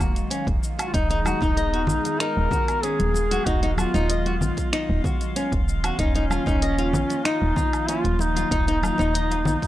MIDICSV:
0, 0, Header, 1, 7, 480
1, 0, Start_track
1, 0, Tempo, 631579
1, 711, Time_signature, 4, 2, 24, 8
1, 7350, End_track
2, 0, Start_track
2, 0, Title_t, "Synth texture"
2, 0, Program_c, 0, 99
2, 715, Note_on_c, 0, 65, 78
2, 715, Note_on_c, 0, 77, 79
2, 7350, Note_off_c, 0, 65, 0
2, 7350, Note_off_c, 0, 77, 0
2, 7350, End_track
3, 0, Start_track
3, 0, Title_t, "Duduk"
3, 0, Program_c, 1, 69
3, 0, Note_on_c, 1, 58, 84
3, 233, Note_off_c, 1, 58, 0
3, 662, Note_on_c, 1, 65, 71
3, 721, Note_on_c, 1, 63, 120
3, 733, Note_off_c, 1, 65, 0
3, 1672, Note_on_c, 1, 70, 127
3, 1684, Note_off_c, 1, 63, 0
3, 2152, Note_on_c, 1, 68, 117
3, 2163, Note_off_c, 1, 70, 0
3, 2630, Note_on_c, 1, 66, 115
3, 2641, Note_off_c, 1, 68, 0
3, 2818, Note_off_c, 1, 66, 0
3, 2823, Note_on_c, 1, 66, 65
3, 2874, Note_on_c, 1, 65, 97
3, 2885, Note_off_c, 1, 66, 0
3, 3593, Note_off_c, 1, 65, 0
3, 4548, Note_on_c, 1, 61, 113
3, 5512, Note_on_c, 1, 63, 117
3, 5523, Note_off_c, 1, 61, 0
3, 5992, Note_on_c, 1, 65, 115
3, 6003, Note_off_c, 1, 63, 0
3, 6234, Note_on_c, 1, 63, 121
3, 6245, Note_off_c, 1, 65, 0
3, 7350, Note_off_c, 1, 63, 0
3, 7350, End_track
4, 0, Start_track
4, 0, Title_t, "Nylon-string guitar"
4, 0, Program_c, 2, 24
4, 0, Note_on_c, 2, 66, 69
4, 220, Note_off_c, 2, 66, 0
4, 231, Note_on_c, 2, 61, 88
4, 350, Note_off_c, 2, 61, 0
4, 598, Note_on_c, 2, 66, 74
4, 701, Note_off_c, 2, 66, 0
4, 712, Note_on_c, 2, 63, 104
4, 824, Note_off_c, 2, 63, 0
4, 838, Note_on_c, 2, 63, 99
4, 903, Note_off_c, 2, 63, 0
4, 952, Note_on_c, 2, 66, 80
4, 1065, Note_off_c, 2, 66, 0
4, 1078, Note_on_c, 2, 63, 95
4, 1181, Note_off_c, 2, 63, 0
4, 1192, Note_on_c, 2, 75, 82
4, 1310, Note_off_c, 2, 75, 0
4, 1318, Note_on_c, 2, 66, 78
4, 1383, Note_off_c, 2, 66, 0
4, 1674, Note_on_c, 2, 63, 96
4, 1901, Note_off_c, 2, 63, 0
4, 1912, Note_on_c, 2, 66, 69
4, 2140, Note_off_c, 2, 66, 0
4, 2152, Note_on_c, 2, 61, 89
4, 2270, Note_off_c, 2, 61, 0
4, 2517, Note_on_c, 2, 66, 80
4, 2620, Note_off_c, 2, 66, 0
4, 2631, Note_on_c, 2, 63, 103
4, 2744, Note_off_c, 2, 63, 0
4, 2756, Note_on_c, 2, 63, 104
4, 2822, Note_off_c, 2, 63, 0
4, 2871, Note_on_c, 2, 66, 75
4, 2984, Note_off_c, 2, 66, 0
4, 2996, Note_on_c, 2, 63, 107
4, 3100, Note_off_c, 2, 63, 0
4, 3111, Note_on_c, 2, 75, 76
4, 3230, Note_off_c, 2, 75, 0
4, 3237, Note_on_c, 2, 66, 77
4, 3303, Note_off_c, 2, 66, 0
4, 3592, Note_on_c, 2, 63, 105
4, 3820, Note_off_c, 2, 63, 0
4, 3834, Note_on_c, 2, 66, 76
4, 4061, Note_off_c, 2, 66, 0
4, 4073, Note_on_c, 2, 61, 88
4, 4191, Note_off_c, 2, 61, 0
4, 4439, Note_on_c, 2, 66, 84
4, 4541, Note_off_c, 2, 66, 0
4, 4553, Note_on_c, 2, 63, 103
4, 4665, Note_off_c, 2, 63, 0
4, 4677, Note_on_c, 2, 63, 99
4, 4743, Note_off_c, 2, 63, 0
4, 4791, Note_on_c, 2, 65, 75
4, 4904, Note_off_c, 2, 65, 0
4, 4915, Note_on_c, 2, 63, 103
4, 5019, Note_off_c, 2, 63, 0
4, 5032, Note_on_c, 2, 75, 83
4, 5151, Note_off_c, 2, 75, 0
4, 5155, Note_on_c, 2, 65, 76
4, 5221, Note_off_c, 2, 65, 0
4, 5510, Note_on_c, 2, 63, 100
4, 5739, Note_off_c, 2, 63, 0
4, 5749, Note_on_c, 2, 65, 74
4, 5979, Note_off_c, 2, 65, 0
4, 5990, Note_on_c, 2, 61, 85
4, 6110, Note_off_c, 2, 61, 0
4, 6354, Note_on_c, 2, 65, 84
4, 6459, Note_off_c, 2, 65, 0
4, 6469, Note_on_c, 2, 63, 101
4, 6583, Note_off_c, 2, 63, 0
4, 6595, Note_on_c, 2, 63, 105
4, 6661, Note_off_c, 2, 63, 0
4, 6710, Note_on_c, 2, 65, 77
4, 6823, Note_off_c, 2, 65, 0
4, 6832, Note_on_c, 2, 63, 104
4, 6938, Note_off_c, 2, 63, 0
4, 6949, Note_on_c, 2, 75, 77
4, 7069, Note_off_c, 2, 75, 0
4, 7076, Note_on_c, 2, 65, 74
4, 7142, Note_off_c, 2, 65, 0
4, 7350, End_track
5, 0, Start_track
5, 0, Title_t, "Analog synth pad"
5, 0, Program_c, 3, 89
5, 0, Note_on_c, 3, 51, 88
5, 0, Note_on_c, 3, 54, 82
5, 0, Note_on_c, 3, 56, 82
5, 0, Note_on_c, 3, 77, 92
5, 683, Note_off_c, 3, 77, 0
5, 684, Note_off_c, 3, 54, 0
5, 711, Note_on_c, 3, 59, 76
5, 713, Note_on_c, 3, 68, 96
5, 2613, Note_off_c, 3, 68, 0
5, 2635, Note_on_c, 3, 54, 97
5, 4521, Note_off_c, 3, 56, 0
5, 4521, Note_off_c, 3, 59, 0
5, 4523, Note_off_c, 3, 51, 0
5, 4534, Note_off_c, 3, 54, 0
5, 4551, Note_on_c, 3, 51, 87
5, 4552, Note_on_c, 3, 53, 87
5, 4552, Note_on_c, 3, 58, 83
5, 4552, Note_on_c, 3, 65, 98
5, 6452, Note_off_c, 3, 65, 0
5, 6472, Note_on_c, 3, 63, 99
5, 7350, Note_off_c, 3, 51, 0
5, 7350, Note_off_c, 3, 53, 0
5, 7350, Note_off_c, 3, 58, 0
5, 7350, Note_off_c, 3, 63, 0
5, 7350, End_track
6, 0, Start_track
6, 0, Title_t, "FM bass"
6, 0, Program_c, 4, 39
6, 0, Note_on_c, 4, 27, 90
6, 171, Note_off_c, 4, 27, 0
6, 357, Note_on_c, 4, 27, 99
6, 434, Note_off_c, 4, 27, 0
6, 713, Note_on_c, 4, 27, 94
6, 1010, Note_off_c, 4, 27, 0
6, 1077, Note_on_c, 4, 27, 91
6, 1435, Note_on_c, 4, 34, 84
6, 1446, Note_off_c, 4, 27, 0
6, 1513, Note_off_c, 4, 34, 0
6, 1801, Note_on_c, 4, 27, 89
6, 1875, Note_off_c, 4, 27, 0
6, 2278, Note_on_c, 4, 27, 74
6, 2571, Note_off_c, 4, 27, 0
6, 2632, Note_on_c, 4, 27, 103
6, 2930, Note_off_c, 4, 27, 0
6, 2997, Note_on_c, 4, 27, 94
6, 3353, Note_on_c, 4, 34, 92
6, 3364, Note_off_c, 4, 27, 0
6, 3432, Note_off_c, 4, 34, 0
6, 3719, Note_on_c, 4, 27, 94
6, 3794, Note_off_c, 4, 27, 0
6, 4196, Note_on_c, 4, 27, 81
6, 4490, Note_off_c, 4, 27, 0
6, 4550, Note_on_c, 4, 27, 100
6, 4849, Note_off_c, 4, 27, 0
6, 4916, Note_on_c, 4, 27, 92
6, 5270, Note_on_c, 4, 34, 84
6, 5282, Note_off_c, 4, 27, 0
6, 5351, Note_off_c, 4, 34, 0
6, 5637, Note_on_c, 4, 27, 95
6, 5713, Note_off_c, 4, 27, 0
6, 6117, Note_on_c, 4, 27, 82
6, 6410, Note_off_c, 4, 27, 0
6, 6469, Note_on_c, 4, 27, 107
6, 6769, Note_off_c, 4, 27, 0
6, 6836, Note_on_c, 4, 27, 85
6, 7191, Note_on_c, 4, 34, 84
6, 7202, Note_off_c, 4, 27, 0
6, 7271, Note_off_c, 4, 34, 0
6, 7350, End_track
7, 0, Start_track
7, 0, Title_t, "Drums"
7, 0, Note_on_c, 9, 77, 57
7, 5, Note_on_c, 9, 82, 79
7, 75, Note_off_c, 9, 77, 0
7, 81, Note_off_c, 9, 82, 0
7, 123, Note_on_c, 9, 42, 29
7, 130, Note_on_c, 9, 82, 42
7, 199, Note_off_c, 9, 42, 0
7, 206, Note_off_c, 9, 82, 0
7, 237, Note_on_c, 9, 42, 60
7, 243, Note_on_c, 9, 82, 35
7, 313, Note_off_c, 9, 42, 0
7, 319, Note_off_c, 9, 82, 0
7, 357, Note_on_c, 9, 36, 108
7, 362, Note_on_c, 9, 42, 28
7, 433, Note_off_c, 9, 36, 0
7, 438, Note_off_c, 9, 42, 0
7, 482, Note_on_c, 9, 82, 76
7, 558, Note_off_c, 9, 82, 0
7, 602, Note_on_c, 9, 42, 42
7, 602, Note_on_c, 9, 77, 72
7, 608, Note_on_c, 9, 82, 47
7, 678, Note_off_c, 9, 42, 0
7, 678, Note_off_c, 9, 77, 0
7, 684, Note_off_c, 9, 82, 0
7, 712, Note_on_c, 9, 36, 109
7, 717, Note_on_c, 9, 42, 67
7, 723, Note_on_c, 9, 82, 34
7, 788, Note_off_c, 9, 36, 0
7, 793, Note_off_c, 9, 42, 0
7, 799, Note_off_c, 9, 82, 0
7, 834, Note_on_c, 9, 62, 54
7, 841, Note_on_c, 9, 42, 44
7, 910, Note_off_c, 9, 62, 0
7, 917, Note_off_c, 9, 42, 0
7, 949, Note_on_c, 9, 63, 75
7, 955, Note_on_c, 9, 77, 77
7, 961, Note_on_c, 9, 82, 72
7, 1025, Note_off_c, 9, 63, 0
7, 1031, Note_off_c, 9, 77, 0
7, 1037, Note_off_c, 9, 82, 0
7, 1069, Note_on_c, 9, 62, 47
7, 1077, Note_on_c, 9, 36, 111
7, 1086, Note_on_c, 9, 82, 45
7, 1145, Note_off_c, 9, 62, 0
7, 1153, Note_off_c, 9, 36, 0
7, 1162, Note_off_c, 9, 82, 0
7, 1196, Note_on_c, 9, 42, 67
7, 1202, Note_on_c, 9, 82, 34
7, 1272, Note_off_c, 9, 42, 0
7, 1278, Note_off_c, 9, 82, 0
7, 1320, Note_on_c, 9, 42, 31
7, 1396, Note_off_c, 9, 42, 0
7, 1422, Note_on_c, 9, 64, 101
7, 1440, Note_on_c, 9, 82, 77
7, 1498, Note_off_c, 9, 64, 0
7, 1516, Note_off_c, 9, 82, 0
7, 1557, Note_on_c, 9, 62, 46
7, 1559, Note_on_c, 9, 42, 28
7, 1565, Note_on_c, 9, 82, 43
7, 1633, Note_off_c, 9, 62, 0
7, 1635, Note_off_c, 9, 42, 0
7, 1641, Note_off_c, 9, 82, 0
7, 1674, Note_on_c, 9, 26, 76
7, 1674, Note_on_c, 9, 42, 69
7, 1680, Note_on_c, 9, 82, 37
7, 1750, Note_off_c, 9, 26, 0
7, 1750, Note_off_c, 9, 42, 0
7, 1756, Note_off_c, 9, 82, 0
7, 1907, Note_on_c, 9, 64, 89
7, 1911, Note_on_c, 9, 36, 99
7, 1920, Note_on_c, 9, 82, 74
7, 1983, Note_off_c, 9, 64, 0
7, 1987, Note_off_c, 9, 36, 0
7, 1996, Note_off_c, 9, 82, 0
7, 2039, Note_on_c, 9, 42, 28
7, 2039, Note_on_c, 9, 77, 55
7, 2045, Note_on_c, 9, 82, 42
7, 2115, Note_off_c, 9, 42, 0
7, 2115, Note_off_c, 9, 77, 0
7, 2121, Note_off_c, 9, 82, 0
7, 2153, Note_on_c, 9, 42, 65
7, 2160, Note_on_c, 9, 82, 33
7, 2229, Note_off_c, 9, 42, 0
7, 2236, Note_off_c, 9, 82, 0
7, 2275, Note_on_c, 9, 63, 70
7, 2278, Note_on_c, 9, 42, 29
7, 2351, Note_off_c, 9, 63, 0
7, 2354, Note_off_c, 9, 42, 0
7, 2388, Note_on_c, 9, 62, 53
7, 2399, Note_on_c, 9, 82, 81
7, 2464, Note_off_c, 9, 62, 0
7, 2475, Note_off_c, 9, 82, 0
7, 2518, Note_on_c, 9, 42, 45
7, 2523, Note_on_c, 9, 63, 55
7, 2524, Note_on_c, 9, 82, 47
7, 2594, Note_off_c, 9, 42, 0
7, 2599, Note_off_c, 9, 63, 0
7, 2600, Note_off_c, 9, 82, 0
7, 2632, Note_on_c, 9, 36, 113
7, 2635, Note_on_c, 9, 42, 68
7, 2641, Note_on_c, 9, 82, 33
7, 2708, Note_off_c, 9, 36, 0
7, 2711, Note_off_c, 9, 42, 0
7, 2717, Note_off_c, 9, 82, 0
7, 2758, Note_on_c, 9, 42, 43
7, 2758, Note_on_c, 9, 62, 50
7, 2834, Note_off_c, 9, 42, 0
7, 2834, Note_off_c, 9, 62, 0
7, 2869, Note_on_c, 9, 63, 79
7, 2873, Note_on_c, 9, 77, 79
7, 2879, Note_on_c, 9, 82, 68
7, 2945, Note_off_c, 9, 63, 0
7, 2949, Note_off_c, 9, 77, 0
7, 2955, Note_off_c, 9, 82, 0
7, 2998, Note_on_c, 9, 62, 48
7, 3004, Note_on_c, 9, 82, 46
7, 3074, Note_off_c, 9, 62, 0
7, 3080, Note_off_c, 9, 82, 0
7, 3113, Note_on_c, 9, 42, 68
7, 3119, Note_on_c, 9, 82, 36
7, 3189, Note_off_c, 9, 42, 0
7, 3195, Note_off_c, 9, 82, 0
7, 3237, Note_on_c, 9, 63, 33
7, 3239, Note_on_c, 9, 42, 31
7, 3313, Note_off_c, 9, 63, 0
7, 3315, Note_off_c, 9, 42, 0
7, 3351, Note_on_c, 9, 64, 87
7, 3360, Note_on_c, 9, 82, 75
7, 3427, Note_off_c, 9, 64, 0
7, 3436, Note_off_c, 9, 82, 0
7, 3473, Note_on_c, 9, 62, 57
7, 3477, Note_on_c, 9, 36, 61
7, 3479, Note_on_c, 9, 42, 29
7, 3485, Note_on_c, 9, 82, 41
7, 3549, Note_off_c, 9, 62, 0
7, 3553, Note_off_c, 9, 36, 0
7, 3555, Note_off_c, 9, 42, 0
7, 3561, Note_off_c, 9, 82, 0
7, 3594, Note_on_c, 9, 26, 80
7, 3594, Note_on_c, 9, 42, 73
7, 3600, Note_on_c, 9, 82, 34
7, 3670, Note_off_c, 9, 26, 0
7, 3670, Note_off_c, 9, 42, 0
7, 3676, Note_off_c, 9, 82, 0
7, 3831, Note_on_c, 9, 64, 87
7, 3832, Note_on_c, 9, 36, 94
7, 3840, Note_on_c, 9, 82, 74
7, 3907, Note_off_c, 9, 64, 0
7, 3908, Note_off_c, 9, 36, 0
7, 3916, Note_off_c, 9, 82, 0
7, 3959, Note_on_c, 9, 42, 29
7, 3965, Note_on_c, 9, 82, 40
7, 4035, Note_off_c, 9, 42, 0
7, 4041, Note_off_c, 9, 82, 0
7, 4075, Note_on_c, 9, 42, 66
7, 4082, Note_on_c, 9, 82, 34
7, 4151, Note_off_c, 9, 42, 0
7, 4158, Note_off_c, 9, 82, 0
7, 4196, Note_on_c, 9, 36, 107
7, 4200, Note_on_c, 9, 42, 33
7, 4272, Note_off_c, 9, 36, 0
7, 4276, Note_off_c, 9, 42, 0
7, 4320, Note_on_c, 9, 82, 71
7, 4396, Note_off_c, 9, 82, 0
7, 4438, Note_on_c, 9, 42, 45
7, 4438, Note_on_c, 9, 77, 86
7, 4444, Note_on_c, 9, 82, 43
7, 4514, Note_off_c, 9, 42, 0
7, 4514, Note_off_c, 9, 77, 0
7, 4520, Note_off_c, 9, 82, 0
7, 4551, Note_on_c, 9, 36, 119
7, 4551, Note_on_c, 9, 42, 66
7, 4557, Note_on_c, 9, 82, 32
7, 4627, Note_off_c, 9, 36, 0
7, 4627, Note_off_c, 9, 42, 0
7, 4633, Note_off_c, 9, 82, 0
7, 4671, Note_on_c, 9, 62, 55
7, 4678, Note_on_c, 9, 42, 47
7, 4747, Note_off_c, 9, 62, 0
7, 4754, Note_off_c, 9, 42, 0
7, 4789, Note_on_c, 9, 63, 71
7, 4794, Note_on_c, 9, 77, 82
7, 4800, Note_on_c, 9, 82, 72
7, 4865, Note_off_c, 9, 63, 0
7, 4870, Note_off_c, 9, 77, 0
7, 4876, Note_off_c, 9, 82, 0
7, 4910, Note_on_c, 9, 62, 57
7, 4916, Note_on_c, 9, 36, 105
7, 4925, Note_on_c, 9, 82, 43
7, 4986, Note_off_c, 9, 62, 0
7, 4992, Note_off_c, 9, 36, 0
7, 5001, Note_off_c, 9, 82, 0
7, 5032, Note_on_c, 9, 42, 72
7, 5038, Note_on_c, 9, 82, 35
7, 5108, Note_off_c, 9, 42, 0
7, 5114, Note_off_c, 9, 82, 0
7, 5156, Note_on_c, 9, 42, 33
7, 5232, Note_off_c, 9, 42, 0
7, 5268, Note_on_c, 9, 64, 97
7, 5278, Note_on_c, 9, 82, 73
7, 5344, Note_off_c, 9, 64, 0
7, 5354, Note_off_c, 9, 82, 0
7, 5393, Note_on_c, 9, 62, 51
7, 5398, Note_on_c, 9, 42, 32
7, 5404, Note_on_c, 9, 82, 42
7, 5469, Note_off_c, 9, 62, 0
7, 5474, Note_off_c, 9, 42, 0
7, 5480, Note_off_c, 9, 82, 0
7, 5512, Note_on_c, 9, 26, 80
7, 5512, Note_on_c, 9, 42, 71
7, 5518, Note_on_c, 9, 82, 35
7, 5588, Note_off_c, 9, 26, 0
7, 5588, Note_off_c, 9, 42, 0
7, 5594, Note_off_c, 9, 82, 0
7, 5746, Note_on_c, 9, 64, 79
7, 5750, Note_on_c, 9, 36, 98
7, 5758, Note_on_c, 9, 82, 72
7, 5822, Note_off_c, 9, 64, 0
7, 5826, Note_off_c, 9, 36, 0
7, 5834, Note_off_c, 9, 82, 0
7, 5877, Note_on_c, 9, 42, 31
7, 5877, Note_on_c, 9, 77, 60
7, 5883, Note_on_c, 9, 82, 40
7, 5953, Note_off_c, 9, 42, 0
7, 5953, Note_off_c, 9, 77, 0
7, 5959, Note_off_c, 9, 82, 0
7, 5992, Note_on_c, 9, 42, 69
7, 5998, Note_on_c, 9, 82, 31
7, 6068, Note_off_c, 9, 42, 0
7, 6074, Note_off_c, 9, 82, 0
7, 6111, Note_on_c, 9, 63, 76
7, 6117, Note_on_c, 9, 42, 33
7, 6187, Note_off_c, 9, 63, 0
7, 6193, Note_off_c, 9, 42, 0
7, 6224, Note_on_c, 9, 62, 60
7, 6238, Note_on_c, 9, 82, 74
7, 6300, Note_off_c, 9, 62, 0
7, 6314, Note_off_c, 9, 82, 0
7, 6355, Note_on_c, 9, 63, 61
7, 6358, Note_on_c, 9, 42, 49
7, 6364, Note_on_c, 9, 82, 44
7, 6431, Note_off_c, 9, 63, 0
7, 6434, Note_off_c, 9, 42, 0
7, 6440, Note_off_c, 9, 82, 0
7, 6470, Note_on_c, 9, 36, 109
7, 6474, Note_on_c, 9, 42, 72
7, 6480, Note_on_c, 9, 82, 35
7, 6546, Note_off_c, 9, 36, 0
7, 6550, Note_off_c, 9, 42, 0
7, 6556, Note_off_c, 9, 82, 0
7, 6591, Note_on_c, 9, 62, 56
7, 6597, Note_on_c, 9, 42, 49
7, 6667, Note_off_c, 9, 62, 0
7, 6673, Note_off_c, 9, 42, 0
7, 6710, Note_on_c, 9, 63, 84
7, 6713, Note_on_c, 9, 77, 81
7, 6720, Note_on_c, 9, 82, 76
7, 6786, Note_off_c, 9, 63, 0
7, 6789, Note_off_c, 9, 77, 0
7, 6796, Note_off_c, 9, 82, 0
7, 6825, Note_on_c, 9, 62, 56
7, 6845, Note_on_c, 9, 82, 46
7, 6901, Note_off_c, 9, 62, 0
7, 6921, Note_off_c, 9, 82, 0
7, 6955, Note_on_c, 9, 42, 75
7, 6961, Note_on_c, 9, 82, 33
7, 7031, Note_off_c, 9, 42, 0
7, 7037, Note_off_c, 9, 82, 0
7, 7068, Note_on_c, 9, 63, 38
7, 7080, Note_on_c, 9, 42, 33
7, 7144, Note_off_c, 9, 63, 0
7, 7156, Note_off_c, 9, 42, 0
7, 7185, Note_on_c, 9, 64, 98
7, 7201, Note_on_c, 9, 82, 69
7, 7261, Note_off_c, 9, 64, 0
7, 7277, Note_off_c, 9, 82, 0
7, 7314, Note_on_c, 9, 62, 54
7, 7315, Note_on_c, 9, 36, 61
7, 7320, Note_on_c, 9, 42, 32
7, 7326, Note_on_c, 9, 82, 42
7, 7350, Note_off_c, 9, 36, 0
7, 7350, Note_off_c, 9, 42, 0
7, 7350, Note_off_c, 9, 62, 0
7, 7350, Note_off_c, 9, 82, 0
7, 7350, End_track
0, 0, End_of_file